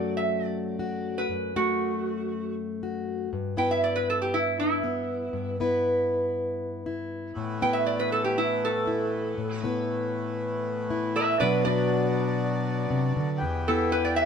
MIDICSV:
0, 0, Header, 1, 4, 480
1, 0, Start_track
1, 0, Key_signature, 1, "minor"
1, 0, Tempo, 505476
1, 1229, Time_signature, 4, 2, 24, 8
1, 13535, End_track
2, 0, Start_track
2, 0, Title_t, "Resonator guitar played with a steel bar"
2, 0, Program_c, 0, 25
2, 0, Note_on_c, 0, 74, 72
2, 138, Note_off_c, 0, 74, 0
2, 160, Note_on_c, 0, 76, 71
2, 417, Note_off_c, 0, 76, 0
2, 417, Note_on_c, 0, 74, 68
2, 1102, Note_off_c, 0, 74, 0
2, 1120, Note_on_c, 0, 71, 74
2, 1464, Note_off_c, 0, 71, 0
2, 1484, Note_on_c, 0, 66, 74
2, 2409, Note_off_c, 0, 66, 0
2, 3400, Note_on_c, 0, 79, 82
2, 3512, Note_off_c, 0, 79, 0
2, 3522, Note_on_c, 0, 76, 78
2, 3633, Note_off_c, 0, 76, 0
2, 3643, Note_on_c, 0, 74, 72
2, 3754, Note_off_c, 0, 74, 0
2, 3756, Note_on_c, 0, 71, 76
2, 3871, Note_off_c, 0, 71, 0
2, 3891, Note_on_c, 0, 69, 76
2, 3998, Note_off_c, 0, 69, 0
2, 4003, Note_on_c, 0, 67, 69
2, 4114, Note_off_c, 0, 67, 0
2, 4119, Note_on_c, 0, 64, 70
2, 4349, Note_off_c, 0, 64, 0
2, 4364, Note_on_c, 0, 64, 78
2, 5290, Note_off_c, 0, 64, 0
2, 7238, Note_on_c, 0, 79, 83
2, 7342, Note_on_c, 0, 76, 73
2, 7352, Note_off_c, 0, 79, 0
2, 7464, Note_off_c, 0, 76, 0
2, 7468, Note_on_c, 0, 74, 71
2, 7587, Note_off_c, 0, 74, 0
2, 7592, Note_on_c, 0, 71, 77
2, 7709, Note_off_c, 0, 71, 0
2, 7713, Note_on_c, 0, 69, 77
2, 7824, Note_off_c, 0, 69, 0
2, 7828, Note_on_c, 0, 67, 76
2, 7947, Note_off_c, 0, 67, 0
2, 7956, Note_on_c, 0, 64, 72
2, 8187, Note_off_c, 0, 64, 0
2, 8211, Note_on_c, 0, 69, 77
2, 9133, Note_off_c, 0, 69, 0
2, 10595, Note_on_c, 0, 71, 72
2, 10600, Note_on_c, 0, 76, 81
2, 10812, Note_off_c, 0, 71, 0
2, 10822, Note_on_c, 0, 71, 80
2, 10827, Note_off_c, 0, 76, 0
2, 10829, Note_on_c, 0, 74, 86
2, 11049, Note_off_c, 0, 74, 0
2, 11050, Note_off_c, 0, 71, 0
2, 11060, Note_on_c, 0, 74, 88
2, 12465, Note_off_c, 0, 74, 0
2, 12989, Note_on_c, 0, 69, 80
2, 13214, Note_off_c, 0, 69, 0
2, 13218, Note_on_c, 0, 71, 90
2, 13338, Note_on_c, 0, 74, 78
2, 13339, Note_off_c, 0, 71, 0
2, 13445, Note_off_c, 0, 74, 0
2, 13449, Note_on_c, 0, 76, 90
2, 13535, Note_off_c, 0, 76, 0
2, 13535, End_track
3, 0, Start_track
3, 0, Title_t, "Steel-string acoustic guitar"
3, 0, Program_c, 1, 25
3, 0, Note_on_c, 1, 42, 62
3, 0, Note_on_c, 1, 54, 58
3, 0, Note_on_c, 1, 57, 47
3, 0, Note_on_c, 1, 66, 46
3, 0, Note_on_c, 1, 69, 60
3, 742, Note_off_c, 1, 66, 0
3, 754, Note_on_c, 1, 66, 54
3, 1201, Note_off_c, 1, 42, 0
3, 1202, Note_off_c, 1, 54, 0
3, 1203, Note_off_c, 1, 66, 0
3, 1204, Note_off_c, 1, 69, 0
3, 1224, Note_on_c, 1, 42, 67
3, 1468, Note_off_c, 1, 57, 0
3, 1484, Note_on_c, 1, 57, 50
3, 2687, Note_on_c, 1, 66, 53
3, 3120, Note_off_c, 1, 42, 0
3, 3130, Note_off_c, 1, 66, 0
3, 3158, Note_off_c, 1, 57, 0
3, 3160, Note_on_c, 1, 43, 70
3, 3391, Note_on_c, 1, 59, 52
3, 3393, Note_on_c, 1, 64, 55
3, 3401, Note_on_c, 1, 71, 58
3, 4588, Note_off_c, 1, 59, 0
3, 4592, Note_on_c, 1, 59, 56
3, 5048, Note_off_c, 1, 43, 0
3, 5062, Note_on_c, 1, 43, 66
3, 5315, Note_off_c, 1, 59, 0
3, 5319, Note_off_c, 1, 64, 0
3, 5319, Note_on_c, 1, 59, 47
3, 5322, Note_off_c, 1, 71, 0
3, 5323, Note_on_c, 1, 64, 49
3, 5325, Note_on_c, 1, 71, 56
3, 6512, Note_off_c, 1, 64, 0
3, 6515, Note_on_c, 1, 64, 56
3, 6959, Note_off_c, 1, 43, 0
3, 6993, Note_on_c, 1, 45, 68
3, 7022, Note_off_c, 1, 59, 0
3, 7022, Note_off_c, 1, 71, 0
3, 7234, Note_on_c, 1, 59, 52
3, 7235, Note_off_c, 1, 64, 0
3, 7239, Note_on_c, 1, 64, 55
3, 7249, Note_on_c, 1, 71, 61
3, 8415, Note_off_c, 1, 64, 0
3, 8427, Note_on_c, 1, 64, 54
3, 8881, Note_off_c, 1, 64, 0
3, 8884, Note_off_c, 1, 45, 0
3, 8904, Note_on_c, 1, 45, 72
3, 8933, Note_off_c, 1, 59, 0
3, 8933, Note_off_c, 1, 71, 0
3, 9150, Note_on_c, 1, 59, 49
3, 9157, Note_on_c, 1, 64, 52
3, 9164, Note_on_c, 1, 71, 61
3, 10344, Note_off_c, 1, 64, 0
3, 10355, Note_on_c, 1, 64, 57
3, 10798, Note_off_c, 1, 45, 0
3, 10804, Note_off_c, 1, 64, 0
3, 10829, Note_on_c, 1, 47, 74
3, 10835, Note_on_c, 1, 54, 62
3, 10836, Note_off_c, 1, 59, 0
3, 10840, Note_on_c, 1, 62, 61
3, 10846, Note_on_c, 1, 66, 61
3, 10849, Note_off_c, 1, 71, 0
3, 10853, Note_on_c, 1, 71, 66
3, 11062, Note_off_c, 1, 62, 0
3, 11072, Note_off_c, 1, 66, 0
3, 11073, Note_on_c, 1, 62, 54
3, 11083, Note_off_c, 1, 71, 0
3, 11083, Note_on_c, 1, 66, 58
3, 11087, Note_on_c, 1, 71, 58
3, 12251, Note_off_c, 1, 47, 0
3, 12254, Note_on_c, 1, 48, 61
3, 12499, Note_off_c, 1, 48, 0
3, 12502, Note_on_c, 1, 50, 58
3, 12720, Note_off_c, 1, 54, 0
3, 12721, Note_off_c, 1, 62, 0
3, 12726, Note_off_c, 1, 66, 0
3, 12727, Note_off_c, 1, 71, 0
3, 12742, Note_on_c, 1, 40, 72
3, 12745, Note_off_c, 1, 50, 0
3, 12992, Note_on_c, 1, 59, 59
3, 12999, Note_on_c, 1, 64, 56
3, 13004, Note_on_c, 1, 67, 57
3, 13535, Note_off_c, 1, 40, 0
3, 13535, Note_off_c, 1, 59, 0
3, 13535, Note_off_c, 1, 64, 0
3, 13535, Note_off_c, 1, 67, 0
3, 13535, End_track
4, 0, Start_track
4, 0, Title_t, "Accordion"
4, 0, Program_c, 2, 21
4, 6966, Note_on_c, 2, 59, 73
4, 6974, Note_on_c, 2, 52, 63
4, 6978, Note_on_c, 2, 45, 70
4, 10779, Note_off_c, 2, 59, 0
4, 10783, Note_off_c, 2, 52, 0
4, 10785, Note_off_c, 2, 45, 0
4, 10804, Note_on_c, 2, 62, 74
4, 10805, Note_on_c, 2, 47, 70
4, 10806, Note_on_c, 2, 54, 59
4, 12704, Note_on_c, 2, 67, 72
4, 12707, Note_on_c, 2, 52, 68
4, 12713, Note_on_c, 2, 59, 70
4, 12715, Note_off_c, 2, 62, 0
4, 12716, Note_off_c, 2, 47, 0
4, 12717, Note_off_c, 2, 54, 0
4, 13535, Note_off_c, 2, 52, 0
4, 13535, Note_off_c, 2, 59, 0
4, 13535, Note_off_c, 2, 67, 0
4, 13535, End_track
0, 0, End_of_file